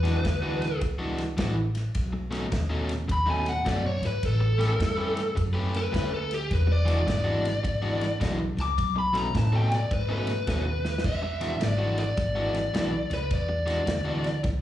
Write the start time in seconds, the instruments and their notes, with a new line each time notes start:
Already playing: upright bass E2, lead electric guitar B4
0.03 overdriven electric guitar E3 G#3 D4 F#4, snare, ride
0.23 upright bass D2, muted overdriven electric guitar stroke, kick, snare, ride
0.42 overdriven electric guitar E3 G#3 D4 F#4
0.62 snare, ride
0.81 upright bass C#2, muted overdriven electric guitar stroke, kick, ride
0.99 overdriven electric guitar E3 G#3 D4 F#4
1.18 snare, ride
1.37 upright bass A1, overdriven electric guitar E3 G#3 D4 F#4, kick, snare, ride
1.55 muted overdriven electric guitar stroke
1.75 snare, ride
1.95 upright bass B1, kick, snare, ride
2.13 muted overdriven electric guitar stroke
2.31 overdriven electric guitar B2 A3 C#4 D#4, snare, ride
2.51 upright bass D#2, muted overdriven electric guitar stroke, kick, snare, ride
2.69 overdriven electric guitar B2 A3 C#4 D#4
2.89 snare, ride
3.08 upright bass D#2, muted overdriven electric guitar stroke, kick, ride
3.12 lead electric guitar B5
3.26 overdriven electric guitar B2 A3 C#4 D#4, lead electric guitar G#5
3.46 lead electric guitar F#5, snare, ride
3.65 upright bass F#2, overdriven electric guitar B2 A3 C#4 D#4, lead electric guitar D5, kick, snare, ride
3.84 lead electric guitar C#5, muted overdriven electric guitar stroke
4.02 upright bass G#2, snare, ride
4.06 lead electric guitar B4
4.23 upright bass A1, lead electric guitar A4, kick, snare, ride
4.40 muted overdriven electric guitar stroke
4.58 overdriven electric guitar A3 C#4 G4 B4, snare, ride
4.79 upright bass G2, muted overdriven electric guitar stroke, kick, snare, ride
4.97 overdriven electric guitar A3 C#4 G4 B4
5.17 snare, ride
5.35 upright bass F#2, muted overdriven electric guitar stroke, kick, ride
5.53 overdriven electric guitar A3 C#4 G4 B4
5.74 lead electric guitar B4, snare, ride
5.92 upright bass D2, overdriven electric guitar A3 C#4 G4 B4, kick, snare, ride
6.11 lead electric guitar A4, muted overdriven electric guitar stroke
6.31 lead electric guitar G4, snare, ride
6.51 upright bass E1, lead electric guitar B4, kick, snare, ride
6.67 muted overdriven electric guitar stroke
6.72 lead electric guitar D5
6.85 overdriven electric guitar E3 G#3 D4 F#4, snare, ride
7.06 upright bass G#1, lead electric guitar D5, muted overdriven electric guitar stroke, kick, snare, ride
7.24 overdriven electric guitar E3 G#3 D4 F#4
7.45 snare, ride
7.63 upright bass G#1, muted overdriven electric guitar stroke, kick, ride
7.82 overdriven electric guitar E3 G#3 D4 F#4
8.01 snare, ride
8.20 upright bass B1, overdriven electric guitar E3 G#3 D4 F#4, kick, snare, ride
8.39 muted overdriven electric guitar stroke
8.57 upright bass C#2, snare, ride
8.61 lead electric guitar D6
8.78 upright bass B1, kick, ride
8.96 lead electric guitar B5, muted overdriven electric guitar stroke
9.13 overdriven electric guitar B2 A3 C#4 D#4, snare, ride
9.17 lead electric guitar A#5
9.34 upright bass A2, lead electric guitar A5, muted overdriven electric guitar stroke, kick, snare, ride
9.52 overdriven electric guitar B2 A3 C#4 D#4, lead electric guitar G5
9.72 lead electric guitar D5, snare, ride
9.91 upright bass G#2, lead electric guitar B4, muted overdriven electric guitar stroke, kick, ride
10.09 overdriven electric guitar B2 A3 C#4 D#4, lead electric guitar B4
10.27 snare, ride
10.47 upright bass D#2, overdriven electric guitar B2 A3 C#4 D#4, kick, snare, ride
10.65 muted overdriven electric guitar stroke
10.85 snare
10.98 snare
11.04 upright bass E1, lead electric guitar E5, kick, snare, crash
11.22 muted overdriven electric guitar stroke
11.41 overdriven electric guitar E3 G#3 D4 F#4, snare, ride
11.60 upright bass G#1, lead electric guitar D5, muted overdriven electric guitar stroke, snare, ride
11.78 overdriven electric guitar E3 G#3 D4 F#4
11.98 lead electric guitar D5, snare, ride
12.17 upright bass G#1, muted overdriven electric guitar stroke, kick, snare, ride
12.35 overdriven electric guitar E3 G#3 D4 F#4
12.54 snare, ride
12.74 upright bass B1, overdriven electric guitar E3 G#3 D4 F#4, snare, ride
12.92 muted overdriven electric guitar stroke
13.10 upright bass C#2, lead electric guitar B4, snare, ride
13.31 upright bass E2, lead electric guitar D5, kick, snare, ride
13.49 muted overdriven electric guitar stroke
13.66 overdriven electric guitar E3 G#3 D4 F#4, snare, ride
13.86 upright bass D2, muted overdriven electric guitar stroke, snare, ride
14.05 overdriven electric guitar E3 G#3 D4 F#4
14.24 snare, ride
14.44 upright bass C#2, muted overdriven electric guitar stroke, kick, snare, ride